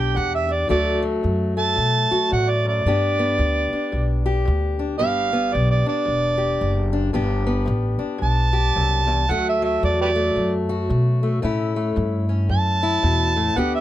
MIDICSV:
0, 0, Header, 1, 5, 480
1, 0, Start_track
1, 0, Key_signature, 2, "major"
1, 0, Tempo, 535714
1, 625, Time_signature, 4, 2, 24, 8
1, 12370, End_track
2, 0, Start_track
2, 0, Title_t, "Harmonica"
2, 0, Program_c, 0, 22
2, 0, Note_on_c, 0, 79, 76
2, 152, Note_on_c, 0, 78, 86
2, 165, Note_off_c, 0, 79, 0
2, 304, Note_off_c, 0, 78, 0
2, 313, Note_on_c, 0, 76, 87
2, 469, Note_on_c, 0, 74, 75
2, 482, Note_off_c, 0, 76, 0
2, 622, Note_off_c, 0, 74, 0
2, 630, Note_on_c, 0, 74, 93
2, 912, Note_off_c, 0, 74, 0
2, 1421, Note_on_c, 0, 81, 106
2, 2045, Note_off_c, 0, 81, 0
2, 2089, Note_on_c, 0, 78, 84
2, 2235, Note_on_c, 0, 74, 81
2, 2248, Note_off_c, 0, 78, 0
2, 2387, Note_off_c, 0, 74, 0
2, 2405, Note_on_c, 0, 74, 88
2, 3803, Note_off_c, 0, 74, 0
2, 4473, Note_on_c, 0, 77, 107
2, 4962, Note_on_c, 0, 74, 84
2, 4975, Note_off_c, 0, 77, 0
2, 5112, Note_off_c, 0, 74, 0
2, 5117, Note_on_c, 0, 74, 77
2, 5270, Note_off_c, 0, 74, 0
2, 5277, Note_on_c, 0, 74, 94
2, 6206, Note_off_c, 0, 74, 0
2, 7372, Note_on_c, 0, 81, 109
2, 8334, Note_on_c, 0, 78, 94
2, 8348, Note_off_c, 0, 81, 0
2, 8479, Note_off_c, 0, 78, 0
2, 8504, Note_on_c, 0, 76, 82
2, 8635, Note_off_c, 0, 76, 0
2, 8640, Note_on_c, 0, 76, 85
2, 8792, Note_off_c, 0, 76, 0
2, 8819, Note_on_c, 0, 74, 79
2, 8962, Note_off_c, 0, 74, 0
2, 8974, Note_on_c, 0, 67, 63
2, 8974, Note_on_c, 0, 71, 63
2, 8974, Note_on_c, 0, 74, 91
2, 9041, Note_off_c, 0, 71, 0
2, 9049, Note_off_c, 0, 67, 0
2, 9429, Note_off_c, 0, 74, 0
2, 11207, Note_on_c, 0, 81, 119
2, 12161, Note_on_c, 0, 78, 88
2, 12174, Note_off_c, 0, 81, 0
2, 12309, Note_off_c, 0, 78, 0
2, 12322, Note_on_c, 0, 76, 80
2, 12370, Note_off_c, 0, 76, 0
2, 12370, End_track
3, 0, Start_track
3, 0, Title_t, "Steel-string acoustic guitar"
3, 0, Program_c, 1, 25
3, 0, Note_on_c, 1, 43, 72
3, 0, Note_on_c, 1, 59, 61
3, 0, Note_on_c, 1, 62, 61
3, 0, Note_on_c, 1, 67, 66
3, 105, Note_off_c, 1, 43, 0
3, 131, Note_on_c, 1, 43, 69
3, 434, Note_off_c, 1, 62, 0
3, 438, Note_on_c, 1, 62, 56
3, 581, Note_off_c, 1, 43, 0
3, 598, Note_off_c, 1, 67, 0
3, 605, Note_off_c, 1, 59, 0
3, 609, Note_on_c, 1, 38, 67
3, 618, Note_on_c, 1, 54, 57
3, 620, Note_off_c, 1, 62, 0
3, 623, Note_on_c, 1, 57, 57
3, 630, Note_on_c, 1, 66, 65
3, 907, Note_off_c, 1, 54, 0
3, 918, Note_on_c, 1, 54, 54
3, 1060, Note_off_c, 1, 38, 0
3, 1102, Note_on_c, 1, 38, 68
3, 1396, Note_off_c, 1, 57, 0
3, 1406, Note_on_c, 1, 57, 61
3, 1547, Note_off_c, 1, 38, 0
3, 1576, Note_on_c, 1, 38, 76
3, 1882, Note_off_c, 1, 66, 0
3, 1894, Note_on_c, 1, 66, 68
3, 2024, Note_off_c, 1, 38, 0
3, 2063, Note_on_c, 1, 40, 54
3, 2358, Note_off_c, 1, 40, 0
3, 2375, Note_on_c, 1, 42, 56
3, 2533, Note_off_c, 1, 66, 0
3, 2548, Note_off_c, 1, 54, 0
3, 2551, Note_off_c, 1, 57, 0
3, 2555, Note_off_c, 1, 42, 0
3, 2563, Note_on_c, 1, 43, 62
3, 2567, Note_on_c, 1, 59, 61
3, 2574, Note_on_c, 1, 62, 56
3, 2581, Note_on_c, 1, 67, 63
3, 2856, Note_off_c, 1, 59, 0
3, 2860, Note_on_c, 1, 59, 55
3, 2998, Note_off_c, 1, 43, 0
3, 3029, Note_on_c, 1, 43, 69
3, 3337, Note_off_c, 1, 62, 0
3, 3341, Note_on_c, 1, 62, 54
3, 3472, Note_off_c, 1, 43, 0
3, 3514, Note_on_c, 1, 43, 71
3, 3810, Note_off_c, 1, 67, 0
3, 3814, Note_on_c, 1, 67, 69
3, 3955, Note_off_c, 1, 43, 0
3, 3990, Note_on_c, 1, 43, 71
3, 4290, Note_off_c, 1, 62, 0
3, 4294, Note_on_c, 1, 62, 59
3, 4433, Note_off_c, 1, 43, 0
3, 4467, Note_on_c, 1, 43, 67
3, 4468, Note_off_c, 1, 59, 0
3, 4471, Note_off_c, 1, 62, 0
3, 4471, Note_on_c, 1, 59, 59
3, 4475, Note_on_c, 1, 62, 53
3, 4482, Note_off_c, 1, 67, 0
3, 4485, Note_on_c, 1, 67, 63
3, 4771, Note_off_c, 1, 59, 0
3, 4774, Note_on_c, 1, 59, 57
3, 4913, Note_off_c, 1, 43, 0
3, 4945, Note_on_c, 1, 43, 74
3, 5249, Note_off_c, 1, 62, 0
3, 5253, Note_on_c, 1, 62, 57
3, 5391, Note_off_c, 1, 43, 0
3, 5423, Note_on_c, 1, 43, 80
3, 5703, Note_off_c, 1, 67, 0
3, 5714, Note_on_c, 1, 67, 65
3, 5870, Note_off_c, 1, 43, 0
3, 6204, Note_off_c, 1, 62, 0
3, 6208, Note_on_c, 1, 62, 62
3, 6365, Note_off_c, 1, 67, 0
3, 6375, Note_off_c, 1, 59, 0
3, 6389, Note_on_c, 1, 43, 73
3, 6393, Note_off_c, 1, 62, 0
3, 6395, Note_on_c, 1, 59, 55
3, 6396, Note_on_c, 1, 62, 58
3, 6403, Note_on_c, 1, 67, 65
3, 6679, Note_off_c, 1, 59, 0
3, 6690, Note_on_c, 1, 59, 60
3, 6834, Note_off_c, 1, 43, 0
3, 6860, Note_on_c, 1, 43, 70
3, 7153, Note_off_c, 1, 62, 0
3, 7157, Note_on_c, 1, 62, 60
3, 7309, Note_off_c, 1, 43, 0
3, 7333, Note_on_c, 1, 43, 79
3, 7632, Note_off_c, 1, 67, 0
3, 7643, Note_on_c, 1, 67, 69
3, 7786, Note_off_c, 1, 43, 0
3, 7843, Note_on_c, 1, 42, 61
3, 8122, Note_off_c, 1, 42, 0
3, 8125, Note_on_c, 1, 40, 65
3, 8286, Note_off_c, 1, 62, 0
3, 8289, Note_off_c, 1, 67, 0
3, 8293, Note_off_c, 1, 59, 0
3, 8313, Note_off_c, 1, 40, 0
3, 8325, Note_on_c, 1, 38, 70
3, 8330, Note_on_c, 1, 54, 53
3, 8341, Note_on_c, 1, 57, 60
3, 8343, Note_on_c, 1, 66, 69
3, 8610, Note_off_c, 1, 54, 0
3, 8621, Note_on_c, 1, 54, 62
3, 8762, Note_off_c, 1, 38, 0
3, 8808, Note_on_c, 1, 38, 69
3, 9097, Note_off_c, 1, 57, 0
3, 9100, Note_on_c, 1, 57, 58
3, 9243, Note_off_c, 1, 38, 0
3, 9284, Note_on_c, 1, 38, 70
3, 9570, Note_off_c, 1, 66, 0
3, 9581, Note_on_c, 1, 66, 66
3, 9721, Note_off_c, 1, 38, 0
3, 9761, Note_on_c, 1, 38, 68
3, 10050, Note_off_c, 1, 57, 0
3, 10061, Note_on_c, 1, 57, 55
3, 10199, Note_off_c, 1, 38, 0
3, 10217, Note_off_c, 1, 66, 0
3, 10226, Note_off_c, 1, 57, 0
3, 10233, Note_off_c, 1, 54, 0
3, 10233, Note_on_c, 1, 45, 68
3, 10237, Note_on_c, 1, 57, 55
3, 10241, Note_on_c, 1, 61, 58
3, 10254, Note_on_c, 1, 64, 60
3, 10527, Note_off_c, 1, 57, 0
3, 10539, Note_on_c, 1, 57, 55
3, 10675, Note_off_c, 1, 45, 0
3, 10717, Note_on_c, 1, 45, 70
3, 11000, Note_off_c, 1, 61, 0
3, 11011, Note_on_c, 1, 61, 52
3, 11156, Note_off_c, 1, 45, 0
3, 11194, Note_on_c, 1, 45, 77
3, 11484, Note_off_c, 1, 64, 0
3, 11494, Note_on_c, 1, 64, 68
3, 11634, Note_off_c, 1, 45, 0
3, 11672, Note_on_c, 1, 47, 59
3, 11963, Note_off_c, 1, 47, 0
3, 11973, Note_on_c, 1, 45, 62
3, 12129, Note_off_c, 1, 61, 0
3, 12132, Note_off_c, 1, 64, 0
3, 12133, Note_off_c, 1, 57, 0
3, 12149, Note_on_c, 1, 43, 77
3, 12154, Note_off_c, 1, 45, 0
3, 12156, Note_on_c, 1, 59, 62
3, 12167, Note_on_c, 1, 62, 64
3, 12173, Note_on_c, 1, 67, 66
3, 12370, Note_off_c, 1, 43, 0
3, 12370, Note_off_c, 1, 59, 0
3, 12370, Note_off_c, 1, 62, 0
3, 12370, Note_off_c, 1, 67, 0
3, 12370, End_track
4, 0, Start_track
4, 0, Title_t, "Upright bass"
4, 0, Program_c, 2, 32
4, 0, Note_on_c, 2, 35, 71
4, 134, Note_off_c, 2, 35, 0
4, 152, Note_on_c, 2, 40, 99
4, 614, Note_off_c, 2, 40, 0
4, 628, Note_on_c, 2, 38, 78
4, 1093, Note_off_c, 2, 38, 0
4, 1111, Note_on_c, 2, 42, 88
4, 1575, Note_off_c, 2, 42, 0
4, 1593, Note_on_c, 2, 47, 75
4, 1862, Note_off_c, 2, 47, 0
4, 2079, Note_on_c, 2, 45, 92
4, 2539, Note_off_c, 2, 45, 0
4, 2557, Note_on_c, 2, 43, 75
4, 3019, Note_off_c, 2, 43, 0
4, 3034, Note_on_c, 2, 38, 88
4, 3304, Note_off_c, 2, 38, 0
4, 3522, Note_on_c, 2, 35, 73
4, 3982, Note_off_c, 2, 35, 0
4, 4010, Note_on_c, 2, 38, 95
4, 4467, Note_off_c, 2, 38, 0
4, 4485, Note_on_c, 2, 31, 76
4, 4944, Note_off_c, 2, 31, 0
4, 4971, Note_on_c, 2, 35, 88
4, 5234, Note_off_c, 2, 35, 0
4, 5444, Note_on_c, 2, 28, 70
4, 5904, Note_off_c, 2, 28, 0
4, 5924, Note_on_c, 2, 30, 91
4, 6384, Note_off_c, 2, 30, 0
4, 6409, Note_on_c, 2, 31, 86
4, 6867, Note_off_c, 2, 31, 0
4, 6876, Note_on_c, 2, 33, 98
4, 7147, Note_off_c, 2, 33, 0
4, 7365, Note_on_c, 2, 35, 81
4, 7825, Note_off_c, 2, 35, 0
4, 7848, Note_on_c, 2, 36, 85
4, 8306, Note_off_c, 2, 36, 0
4, 8323, Note_on_c, 2, 38, 77
4, 8784, Note_off_c, 2, 38, 0
4, 8807, Note_on_c, 2, 40, 94
4, 9266, Note_off_c, 2, 40, 0
4, 9281, Note_on_c, 2, 42, 75
4, 9743, Note_off_c, 2, 42, 0
4, 9769, Note_on_c, 2, 47, 90
4, 10226, Note_off_c, 2, 47, 0
4, 10247, Note_on_c, 2, 45, 76
4, 10705, Note_off_c, 2, 45, 0
4, 10724, Note_on_c, 2, 43, 85
4, 11182, Note_off_c, 2, 43, 0
4, 11192, Note_on_c, 2, 42, 72
4, 11656, Note_off_c, 2, 42, 0
4, 11678, Note_on_c, 2, 40, 92
4, 12138, Note_off_c, 2, 40, 0
4, 12152, Note_on_c, 2, 38, 78
4, 12370, Note_off_c, 2, 38, 0
4, 12370, End_track
5, 0, Start_track
5, 0, Title_t, "Muted upright bass strokes"
5, 1888, Note_on_c, 9, 29, 41
5, 1978, Note_off_c, 9, 29, 0
5, 3342, Note_on_c, 9, 29, 36
5, 3431, Note_off_c, 9, 29, 0
5, 5271, Note_on_c, 9, 29, 39
5, 5360, Note_off_c, 9, 29, 0
5, 7181, Note_on_c, 9, 29, 40
5, 7271, Note_off_c, 9, 29, 0
5, 12370, End_track
0, 0, End_of_file